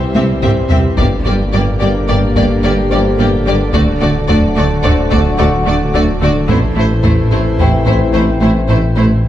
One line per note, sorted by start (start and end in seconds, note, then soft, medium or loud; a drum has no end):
0.00 0.99 C2 medium
0.00 0.99 E3 medium
0.00 0.95 G3 medium
0.00 3.73 G3 medium
0.00 0.94 C4 medium
0.00 0.98 C4 medium
0.00 0.98 E4 medium
0.00 0.94 G4 medium
0.00 0.97 C5 medium
0.14 0.23 C2 medium
0.14 0.27 C2 medium
0.14 0.24 C3 medium
0.14 0.32 C3 medium
0.14 0.23 C4 medium
0.14 0.24 G4 medium
0.14 0.22 E5 soft
0.14 taiko high medium
0.42 0.51 C2 medium
0.42 0.54 C2 medium
0.42 0.60 C2 medium
0.42 0.51 C3 medium
0.42 0.51 C4 medium
0.42 0.51 G4 medium
0.42 2.05 C5 medium
0.42 0.50 E5 medium
0.42 taiko low-mid medium
0.69 0.79 C2 medium
0.69 0.82 C2 medium
0.69 0.78 C3 medium
0.69 0.87 C3 medium
0.69 0.79 C4 medium
0.69 0.79 G4 medium
0.69 0.77 E5 medium
0.69 taiko low medium
0.97 1.09 G1 medium
0.97 3.75 G1 medium
0.97 1.07 G1 medium
0.97 1.07 G2 medium
0.97 1.15 G2 medium
0.97 6.33 D3 medium
0.97 3.73 A#3 medium
0.97 1.06 A#3 medium
0.97 3.70 A#3 medium
0.97 6.48 D4 medium
0.97 6.33 D4 medium
0.97 1.06 G4 medium
0.97 3.69 G4 medium
0.97 6.48 D5 medium
0.97 1.06 D5 medium
0.97 taiko medium
1.25 1.37 G1 medium
1.25 1.34 G1 medium
1.25 1.34 G2 medium
1.25 1.42 G3 medium
1.25 1.35 A#3 medium
1.25 1.34 G4 medium
1.25 1.33 D5 medium
1.53 1.61 G1 medium
1.53 1.64 G1 medium
1.53 1.62 G2 medium
1.53 1.70 G2 medium
1.53 1.62 A#3 medium
1.53 1.61 G4 medium
1.53 1.61 D5 medium
1.80 1.89 G1 medium
1.80 1.92 G1 medium
1.80 1.89 G2 medium
1.80 1.98 G2 medium
1.80 1.89 A#3 medium
1.80 1.88 G4 medium
1.80 1.89 D5 medium
2.08 2.19 G1 medium
2.08 2.17 G1 medium
2.08 2.16 G2 medium
2.08 2.26 G2 medium
2.08 2.16 A#3 medium
2.08 2.16 G4 medium
2.08 2.17 D5 medium
2.35 2.44 G1 medium
2.35 2.47 G1 medium
2.35 2.43 G2 medium
2.35 2.53 G2 medium
2.35 2.45 A#3 medium
2.35 2.45 G4 medium
2.35 2.44 D5 medium
2.35 taiko medium
2.63 2.75 G1 medium
2.63 2.72 G1 medium
2.63 2.71 G2 medium
2.63 2.81 G3 medium
2.63 2.71 A#3 medium
2.63 2.73 G4 medium
2.63 2.72 D5 medium
2.90 2.99 G1 medium
2.90 3.02 G1 medium
2.90 2.98 G2 medium
2.90 3.08 G3 medium
2.90 2.99 A#3 medium
2.90 3.01 G4 medium
2.90 4.52 C5 medium
2.90 2.99 D5 medium
3.18 3.27 G1 medium
3.18 3.30 G1 medium
3.18 3.27 G2 medium
3.18 3.35 G2 medium
3.18 3.26 A#3 medium
3.18 3.28 G4 medium
3.18 3.27 D5 medium
3.46 3.57 G1 medium
3.46 3.55 G1 medium
3.46 3.54 G2 medium
3.46 3.63 G3 medium
3.46 3.54 A#3 medium
3.46 3.55 G4 medium
3.46 3.55 D5 medium
3.73 6.50 D1 medium
3.73 3.84 D2 medium
3.73 3.82 D2 medium
3.73 3.91 D2 medium
3.73 6.49 F#3 medium
3.73 9.20 A3 medium
3.73 9.24 A3 medium
3.73 3.82 A3 medium
3.73 3.81 F#4 medium
3.73 6.33 F#4 medium
3.73 5.34 D5 medium
3.73 3.81 D5 medium
3.73 taiko medium
4.01 4.12 D2 medium
4.01 4.09 D2 medium
4.01 4.18 D3 medium
4.01 4.09 A3 medium
4.01 4.09 F#4 medium
4.01 4.09 D5 medium
4.28 4.36 D2 medium
4.28 4.40 D2 medium
4.28 4.37 D2 medium
4.28 4.46 D2 medium
4.28 4.37 A3 medium
4.28 4.36 F#4 medium
4.28 4.36 D5 medium
4.28 taiko low medium
4.56 4.64 D2 medium
4.56 4.68 D2 medium
4.56 4.74 D2 medium
4.56 4.64 A3 medium
4.56 4.64 F#4 medium
4.56 4.65 D5 medium
4.83 4.92 D2 medium
4.83 4.95 D2 medium
4.83 4.92 D2 medium
4.83 5.02 D2 medium
4.83 4.92 A3 medium
4.83 4.92 F#4 medium
4.83 6.45 C5 medium
4.83 4.91 D5 medium
4.83 taiko low medium
5.11 5.22 D2 medium
5.11 5.19 D2 medium
5.11 5.20 D2 medium
5.11 5.29 D2 medium
5.11 5.19 A3 medium
5.11 5.19 F#4 medium
5.11 5.19 D5 medium
5.11 taiko medium
5.38 5.47 D2 medium
5.38 5.50 D2 medium
5.38 5.47 D2 medium
5.38 5.56 D3 medium
5.38 5.46 A3 medium
5.38 5.47 F#4 medium
5.38 5.46 D5 medium
5.65 5.77 D2 medium
5.65 5.75 D2 medium
5.65 5.83 D3 medium
5.65 5.74 A3 medium
5.65 5.73 F#4 medium
5.65 5.75 D5 medium
5.94 6.02 D2 medium
5.94 6.11 D2 medium
5.94 6.03 D2 medium
5.94 6.06 D2 medium
5.94 6.02 A3 medium
5.94 6.03 F#4 medium
5.94 6.03 D5 medium
6.21 6.29 D2 medium
6.21 6.30 D2 medium
6.21 6.33 D2 medium
6.21 6.39 D3 medium
6.21 6.29 A3 medium
6.21 6.30 F#4 medium
6.21 6.32 D5 medium
6.48 9.25 A1 medium
6.48 6.57 A1 medium
6.48 6.60 A1 medium
6.48 6.56 A2 medium
6.48 6.66 A2 medium
6.48 9.24 E3 medium
6.48 9.21 E3 medium
6.48 6.56 A3 medium
6.48 9.21 C4 medium
6.48 6.56 E4 medium
6.48 9.24 E4 medium
6.48 9.20 E4 medium
6.48 9.24 C5 medium
6.48 6.58 C5 medium
6.48 taiko loud
6.75 6.84 A1 medium
6.75 6.88 A1 medium
6.75 6.84 A2 medium
6.75 6.84 A3 medium
6.75 6.93 A3 medium
6.75 6.83 E4 medium
6.75 6.86 C5 medium
7.03 7.11 A1 medium
7.03 7.15 A1 medium
7.03 7.20 A2 medium
7.03 7.12 A2 medium
7.03 7.12 A3 medium
7.03 7.12 E4 medium
7.03 7.11 C5 medium
7.03 taiko low medium
7.31 7.42 A1 medium
7.31 7.40 A1 medium
7.31 7.48 A2 medium
7.31 7.39 A2 medium
7.31 7.40 A3 medium
7.31 7.39 E4 medium
7.31 7.40 C5 medium
7.58 7.67 A1 medium
7.58 7.70 A1 medium
7.58 7.66 A2 medium
7.58 7.76 A2 medium
7.58 7.68 A3 medium
7.58 7.67 E4 medium
7.58 9.21 G4 soft
7.58 7.68 C5 medium
7.58 9.21 G5 medium
7.58 taiko low medium
7.86 7.98 A1 medium
7.86 7.95 A1 medium
7.86 7.94 A2 medium
7.86 8.03 A2 medium
7.86 7.94 A3 medium
7.86 7.95 E4 medium
7.86 7.94 C5 medium
7.86 taiko medium
8.13 8.22 A1 medium
8.13 8.26 A1 medium
8.13 8.22 A2 medium
8.13 8.21 A3 medium
8.13 8.30 A3 medium
8.13 8.21 E4 medium
8.13 8.21 C5 medium
8.41 8.50 A1 medium
8.41 8.53 A1 medium
8.41 8.49 A2 medium
8.41 8.58 A3 medium
8.41 8.49 A3 medium
8.41 8.51 E4 medium
8.41 8.49 C5 medium
8.68 8.76 A1 medium
8.68 8.80 A1 medium
8.68 8.85 A2 medium
8.68 8.77 A2 medium
8.68 8.76 A3 medium
8.68 8.77 E4 medium
8.68 8.76 C5 medium
8.96 9.04 A1 medium
8.96 9.08 A1 medium
8.96 9.04 A2 medium
8.96 9.04 A3 medium
8.96 9.14 A3 medium
8.96 9.04 E4 medium
8.96 9.04 C5 medium
9.23 9.28 C2 medium